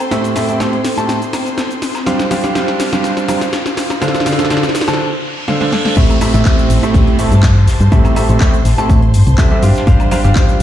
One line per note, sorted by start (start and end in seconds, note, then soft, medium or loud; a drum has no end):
0.00 4.80 C4 medium
0.00 2.50 A4 medium
0.00 4.99 C5 medium
0.00 2.48 G5 medium
0.00 4.99 C6 medium
0.00 riser medium
0.00 shaker soft
0.11 0.33 A2 medium
0.11 0.33 C4 medium
0.11 0.33 G4 medium
0.11 0.33 A4 medium
0.11 0.33 E5 loud
0.11 snare medium
0.11 closed hi-hat medium
0.11 shaker soft
0.24 closed hi-hat soft
0.24 shaker soft
0.36 0.47 A2 medium
0.36 0.47 C4 medium
0.36 0.47 G4 medium
0.36 0.47 A4 medium
0.36 0.47 E5 medium
0.36 snare medium
0.36 closed hi-hat medium
0.36 open hi-hat loud
0.36 shaker medium
0.49 0.58 A2 medium
0.49 0.58 C4 medium
0.49 0.58 G4 medium
0.49 0.58 A4 medium
0.49 0.58 E5 medium
0.49 closed hi-hat medium
0.49 shaker soft
0.60 0.73 A2 medium
0.60 0.73 C4 medium
0.60 0.73 G4 medium
0.60 0.73 A4 medium
0.60 0.73 E5 loud
0.60 snare medium
0.60 snare loud
0.60 closed hi-hat medium
0.60 closed hi-hat soft
0.60 shaker soft
0.73 closed hi-hat soft
0.84 snare soft
0.84 snare medium
0.84 closed hi-hat medium
0.84 open hi-hat medium
0.84 shaker medium
0.97 1.16 A2 medium
0.97 1.16 C4 medium
0.97 1.16 G4 medium
0.97 1.16 A4 medium
0.97 1.16 A5 loud
0.97 closed hi-hat medium
0.97 closed hi-hat soft
0.97 shaker soft
1.09 snare medium
1.09 closed hi-hat medium
1.09 shaker soft
1.22 closed hi-hat soft
1.22 shaker soft
1.33 snare medium
1.33 closed hi-hat medium
1.33 open hi-hat loud
1.33 high woodblock medium
1.33 shaker medium
1.46 closed hi-hat medium
1.46 shaker soft
1.58 snare medium
1.58 snare loud
1.58 closed hi-hat medium
1.58 shaker soft
1.71 closed hi-hat soft
1.71 shaker soft
1.82 snare medium
1.82 closed hi-hat medium
1.82 open hi-hat medium
1.82 shaker medium
1.95 4.62 G4 medium
1.95 4.99 F5 medium
1.95 snare soft
1.95 closed hi-hat medium
1.95 high woodblock medium
1.95 shaker soft
2.06 2.26 G3 loud
2.06 2.26 D4 medium
2.06 2.26 G4 medium
2.06 2.26 C5 medium
2.06 2.26 F5 loud
2.06 snare medium
2.06 closed hi-hat medium
2.06 shaker soft
2.19 snare medium
2.19 closed hi-hat soft
2.19 shaker soft
2.31 2.41 G3 loud
2.31 2.41 D4 medium
2.31 2.41 G4 medium
2.31 2.41 C5 medium
2.31 2.41 F5 loud
2.31 snare loud
2.31 closed hi-hat medium
2.31 open hi-hat loud
2.31 shaker medium
2.44 2.53 G3 loud
2.44 2.53 D4 medium
2.44 2.53 G4 medium
2.44 2.53 C5 medium
2.44 2.53 F5 loud
2.44 snare medium
2.44 closed hi-hat medium
2.44 closed hi-hat soft
2.44 shaker soft
2.55 2.90 G3 medium
2.55 2.90 D4 medium
2.55 2.90 G4 medium
2.55 2.90 C5 medium
2.55 2.90 F5 medium
2.55 snare loud
2.55 snare medium
2.55 closed hi-hat medium
2.55 shaker soft
2.67 snare medium
2.67 closed hi-hat soft
2.80 snare loud
2.80 closed hi-hat medium
2.80 open hi-hat medium
2.80 shaker medium
2.93 3.26 G3 medium
2.93 3.26 D4 medium
2.93 3.26 G4 medium
2.93 3.26 C5 medium
2.93 3.26 F5 loud
2.93 snare medium
2.93 closed hi-hat medium
2.93 shaker soft
3.04 snare medium
3.04 closed hi-hat medium
3.04 shaker soft
3.17 snare medium
3.17 closed hi-hat soft
3.17 shaker soft
3.28 3.41 G3 medium
3.28 3.41 D4 medium
3.28 3.41 G4 medium
3.28 3.41 C5 medium
3.28 3.41 F5 medium
3.28 snare loud
3.28 closed hi-hat medium
3.28 open hi-hat loud
3.28 high woodblock medium
3.28 shaker medium
3.41 snare medium
3.41 closed hi-hat medium
3.41 shaker soft
3.53 snare loud
3.53 closed hi-hat medium
3.53 shaker soft
3.66 snare medium
3.66 snare soft
3.66 closed hi-hat soft
3.66 shaker soft
3.77 snare medium
3.77 snare loud
3.77 closed hi-hat medium
3.77 open hi-hat medium
3.77 shaker medium
3.90 snare medium
3.90 closed hi-hat medium
3.90 high woodblock medium
3.90 shaker soft
4.01 4.23 D3 medium
4.01 4.23 D4 medium
4.01 4.99 D4 medium
4.01 4.23 A4 medium
4.01 4.23 C5 medium
4.01 4.23 F5 loud
4.01 snare loud
4.01 closed hi-hat medium
4.01 shaker soft
4.08 snare medium
4.15 snare medium
4.15 closed hi-hat soft
4.15 shaker soft
4.20 snare medium
4.26 4.37 D3 medium
4.26 4.37 D4 medium
4.26 4.37 A4 medium
4.26 4.37 C5 medium
4.26 4.37 F5 medium
4.26 snare loud
4.26 closed hi-hat medium
4.26 open hi-hat loud
4.26 shaker medium
4.32 snare medium
4.39 4.49 D3 medium
4.39 4.49 D4 medium
4.39 4.49 A4 medium
4.39 4.49 C5 medium
4.39 4.49 F5 medium
4.39 snare loud
4.39 closed hi-hat medium
4.39 shaker soft
4.45 4.99 C5 medium
4.45 snare medium
4.50 4.63 D3 loud
4.50 4.63 D4 medium
4.50 4.63 A4 medium
4.50 4.63 C5 medium
4.50 4.63 F5 loud
4.50 snare loud
4.50 closed hi-hat medium
4.50 shaker soft
4.57 snare medium
4.63 snare medium
4.63 closed hi-hat soft
4.63 shaker soft
4.69 snare loud
4.75 snare loud
4.75 snare soft
4.75 closed hi-hat medium
4.75 open hi-hat medium
4.75 shaker medium
4.81 snare medium
4.88 5.06 D3 medium
4.88 5.06 D4 medium
4.88 5.06 A4 medium
4.88 5.06 C5 medium
4.88 5.06 A5 loud
4.88 snare medium
4.88 closed hi-hat medium
4.88 closed hi-hat soft
4.88 shaker soft
4.93 snare medium
4.99 reverse cymbal medium
5.48 5.59 D3 medium
5.48 5.59 D4 medium
5.48 5.59 A4 medium
5.48 5.59 C5 medium
5.48 5.59 F5 loud
5.48 snare medium
5.61 5.71 D3 medium
5.61 5.71 D4 medium
5.61 5.71 A4 medium
5.61 5.71 C5 medium
5.61 5.71 F5 loud
5.61 snare medium
5.72 5.94 D4 medium
5.72 5.94 A4 medium
5.72 5.94 C5 medium
5.72 5.94 F5 loud
5.72 snare medium
5.85 snare medium
5.97 6.06 A1 loud
5.97 6.16 A2 loud
5.97 6.16 C4 medium
5.97 10.51 G4 medium
5.97 6.16 G4 medium
5.97 6.16 A4 medium
5.97 10.63 C5 medium
5.97 6.16 E5 loud
5.97 10.63 C6 medium
5.97 kick loud
5.97 closed hi-hat medium
5.97 crash loud
5.97 downlifter medium
5.97 shaker soft
6.10 closed hi-hat soft
6.10 high woodblock medium
6.10 shaker soft
6.21 6.31 A2 loud
6.21 6.31 C4 medium
6.21 6.31 G4 medium
6.21 6.31 A4 medium
6.21 6.31 E5 loud
6.21 closed hi-hat medium
6.21 open hi-hat loud
6.21 high woodblock medium
6.21 shaker medium
6.34 6.42 A1 loud
6.34 6.43 A2 loud
6.34 6.43 C4 medium
6.34 6.43 G4 medium
6.34 6.43 A4 medium
6.34 6.43 E5 loud
6.34 closed hi-hat medium
6.34 closed hi-hat soft
6.34 shaker soft
6.45 6.80 A2 medium
6.45 6.80 C4 medium
6.45 6.80 G4 medium
6.45 6.80 A4 medium
6.45 6.80 E5 medium
6.45 10.51 A5 medium
6.45 kick loud
6.45 snare loud
6.45 clap loud
6.45 closed hi-hat medium
6.45 shaker soft
6.58 closed hi-hat soft
6.58 shaker soft
6.70 6.79 A1 medium
6.70 closed hi-hat medium
6.70 open hi-hat medium
6.70 shaker medium
6.83 7.16 A2 medium
6.83 7.16 C4 medium
6.83 7.16 G4 medium
6.83 7.16 A4 medium
6.83 7.16 E5 loud
6.83 closed hi-hat medium
6.83 shaker soft
6.94 7.26 A1 loud
6.94 kick loud
6.94 closed hi-hat medium
6.94 shaker soft
7.07 closed hi-hat soft
7.19 7.31 A2 medium
7.19 7.31 C4 medium
7.19 7.31 G4 medium
7.19 7.31 A4 medium
7.19 7.31 E5 medium
7.19 closed hi-hat medium
7.19 open hi-hat loud
7.19 shaker medium
7.32 7.69 G2 medium
7.32 closed hi-hat medium
7.32 shaker soft
7.43 kick loud
7.43 snare loud
7.43 clap loud
7.43 closed hi-hat medium
7.43 shaker soft
7.56 snare soft
7.67 7.77 A1 loud
7.67 snare medium
7.67 closed hi-hat medium
7.67 open hi-hat medium
7.67 shaker medium
7.80 7.89 G2 medium
7.80 closed hi-hat medium
7.80 shaker soft
7.92 8.01 A1 loud
7.92 8.14 A2 medium
7.92 8.14 C4 medium
7.92 8.14 G4 medium
7.92 8.14 A4 medium
7.92 8.14 E5 loud
7.92 kick loud
7.92 closed hi-hat medium
7.92 shaker soft
8.05 closed hi-hat soft
8.05 high woodblock medium
8.05 shaker soft
8.16 8.27 A2 medium
8.16 8.27 C4 medium
8.16 8.27 G4 medium
8.16 8.27 A4 medium
8.16 8.27 E5 medium
8.16 closed hi-hat medium
8.16 open hi-hat loud
8.16 high woodblock medium
8.16 shaker medium
8.29 8.38 A1 loud
8.29 8.39 A2 medium
8.29 8.39 C4 medium
8.29 8.39 G4 medium
8.29 8.39 A4 medium
8.29 8.39 E5 medium
8.29 closed hi-hat medium
8.29 shaker soft
8.40 8.53 A2 loud
8.40 8.53 C4 medium
8.40 8.53 G4 medium
8.40 8.53 A4 medium
8.40 8.53 E5 loud
8.40 kick loud
8.40 snare loud
8.40 clap loud
8.40 closed hi-hat medium
8.40 shaker soft
8.54 closed hi-hat soft
8.54 shaker soft
8.65 8.75 A1 medium
8.65 snare soft
8.65 closed hi-hat medium
8.65 open hi-hat medium
8.65 shaker medium
8.78 8.97 A2 medium
8.78 8.97 C4 medium
8.78 8.97 G4 medium
8.78 8.97 A4 medium
8.78 8.97 A5 loud
8.78 closed hi-hat medium
8.78 closed hi-hat soft
8.78 shaker soft
8.89 9.15 A2 loud
8.89 kick loud
8.89 closed hi-hat loud
8.89 closed hi-hat medium
8.89 shaker soft
9.02 closed hi-hat soft
9.14 9.23 G2 loud
9.14 closed hi-hat medium
9.14 open hi-hat loud
9.14 shaker medium
9.27 9.35 C2 loud
9.27 closed hi-hat medium
9.27 shaker soft
9.38 9.49 G3 medium
9.38 9.49 C4 medium
9.38 9.49 G4 medium
9.38 9.49 A4 medium
9.38 9.49 E5 loud
9.38 kick loud
9.38 snare loud
9.38 clap loud
9.38 closed hi-hat medium
9.38 shaker soft
9.51 9.61 G3 medium
9.51 9.61 C4 medium
9.51 9.61 G4 medium
9.51 9.61 A4 medium
9.51 9.61 E5 loud
9.62 9.72 G2 medium
9.62 9.84 G3 medium
9.62 9.84 D4 medium
9.62 10.63 F4 medium
9.62 9.84 G4 medium
9.62 9.84 C5 medium
9.62 9.84 F5 loud
9.62 closed hi-hat medium
9.62 open hi-hat medium
9.62 shaker medium
9.76 snare soft
9.76 closed hi-hat soft
9.76 shaker soft
9.87 9.96 G1 loud
9.87 10.06 G3 loud
9.87 10.06 D4 medium
9.87 10.06 G4 medium
9.87 10.06 C5 medium
9.87 10.06 F5 loud
9.87 kick loud
9.87 closed hi-hat medium
9.87 shaker soft
10.00 closed hi-hat soft
10.00 high woodblock medium
10.00 shaker soft
10.11 10.21 G3 loud
10.11 10.21 D4 medium
10.11 10.21 G4 medium
10.11 10.21 C5 medium
10.11 10.21 F5 loud
10.11 closed hi-hat medium
10.11 open hi-hat loud
10.11 high woodblock medium
10.11 shaker medium
10.24 10.33 G1 loud
10.24 10.33 G3 medium
10.24 10.33 D4 medium
10.24 10.33 G4 medium
10.24 10.33 C5 medium
10.24 10.33 F5 loud
10.24 closed hi-hat soft
10.24 closed hi-hat medium
10.24 shaker soft
10.30 10.63 G5 medium
10.36 10.63 G3 medium
10.36 10.63 D4 medium
10.36 10.63 G4 medium
10.36 10.63 C5 medium
10.36 kick loud
10.36 snare loud
10.36 clap loud
10.36 closed hi-hat medium
10.36 shaker soft
10.49 closed hi-hat soft
10.49 shaker soft